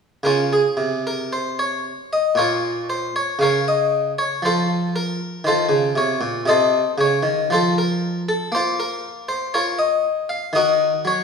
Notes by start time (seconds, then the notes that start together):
0.23 C#3 C#4 F4 A#4
0.53 G#4
0.77 C3
1.07 A#4
1.33 C5
1.59 C#5
2.13 D#5
2.35 A#2 F4 A#4 C#5
2.90 C5
3.16 C#5
3.39 C#3 C#5 F5
3.43 A#4
3.68 D#5
4.18 C#5
4.42 F3 F4 A4 C5
4.96 A#4
5.44 D#3 F4 A4 C5
5.69 C#3
5.95 C3 C#5
6.21 A#2
6.46 C3 A4 C5 D#5
6.98 C#3 C#5
7.23 D#3
7.50 F3 F4 A4 C5
7.78 A#4
8.29 A4
8.52 A#3 C5
8.56 F4
8.80 A#4
9.29 C5
9.54 F4 A#4 C#5
9.79 D#5
10.29 F5
10.53 D#3 F#4 A#4 D#5
11.05 F#3 C#5